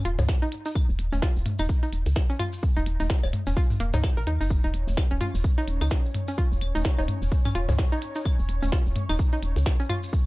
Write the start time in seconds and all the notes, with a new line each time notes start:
0.05 D#1 F4, closed hi-hat
0.19 C#2, closed hi-hat, mid tom, high bongo, high conga, maracas
0.28 kick, snare, maracas
0.42 D#4, maracas
0.52 closed hi-hat
0.66 D#4, maracas
0.75 kick, claves, maracas
0.89 D#1, maracas
0.99 D#1, closed hi-hat
1.12 D#1 C#4, high conga, maracas
1.22 F4, kick, snare, maracas
1.36 D#1, maracas
1.46 closed hi-hat, mid tom, high conga
1.59 D#1 D#4, claves, maracas
1.69 kick, closed hi-hat, maracas
1.83 D#4, maracas
1.93 D#1, closed hi-hat
2.06 C#2, closed hi-hat, maracas
2.16 kick, snare, maracas
2.29 C#4, maracas
2.39 F4, closed hi-hat, mid tom, high conga, claves
2.53 maracas
2.62 kick, maracas
2.77 D#1 D#4, maracas
2.86 D#1, closed hi-hat
3.00 D#1 D#4, high conga, maracas
3.10 kick, snare, maracas
3.23 D#1, high bongo, claves, maracas
3.33 closed hi-hat, mid tom, high conga
3.47 D#1 C#4, maracas
3.56 F4, kick, closed hi-hat, maracas
3.70 mid tom, high conga, maracas
3.80 D#1 A#3, closed hi-hat
3.93 C#2 D#4, closed hi-hat, mid tom, high bongo, high conga, maracas
4.03 kick, snare, claves, maracas
4.17 A#1 A#4, maracas
4.27 D#2 D#4, closed hi-hat
4.41 F#1 D#4, maracas
4.50 C#4 C#5, kick, maracas
4.63 D#1 D#4, maracas
4.74 D#1, closed hi-hat
4.88 D#1, high conga, maracas
4.97 kick, snare, claves, maracas
5.11 D#1 C#4, maracas
5.21 F4, closed hi-hat, mid tom, high conga
5.34 D#1, maracas
5.44 kick, closed hi-hat, maracas
5.58 D#4, maracas
5.68 D#1, closed hi-hat
5.81 C#2 D#4, closed hi-hat, claves, maracas
5.91 kick, snare, maracas
6.06 maracas
6.14 closed hi-hat, mid tom, high conga
6.28 C#4, maracas
6.38 F4, kick, maracas
6.52 D#1, maracas
6.61 D#1, closed hi-hat, claves
6.75 D#1 D#4, high conga, maracas
6.84 kick, snare, maracas
6.98 D#1 D#4, high bongo, maracas
7.08 closed hi-hat, mid tom, high conga
7.22 D#1, maracas
7.32 kick, closed hi-hat, maracas
7.45 C#4, mid tom, claves, maracas
7.55 D#1 F4, closed hi-hat
7.69 C#2, closed hi-hat, mid tom, high bongo, high conga, maracas
7.79 kick, snare, maracas
7.92 D#4, maracas
8.02 closed hi-hat
8.15 D#4, maracas
8.25 kick, claves, maracas
8.39 D#1, maracas
8.49 D#1, closed hi-hat
8.62 D#1 C#4, high conga, maracas
8.72 F4, kick, snare, maracas
8.86 D#1, maracas
8.96 closed hi-hat, mid tom, high conga
9.09 D#1 D#4, claves, maracas
9.19 kick, closed hi-hat, maracas
9.32 D#4, maracas
9.43 D#1, closed hi-hat
9.56 C#2, closed hi-hat, maracas
9.66 kick, snare, maracas
9.80 C#4, maracas
9.89 F4, closed hi-hat, mid tom, high conga, claves
10.03 maracas
10.13 kick, maracas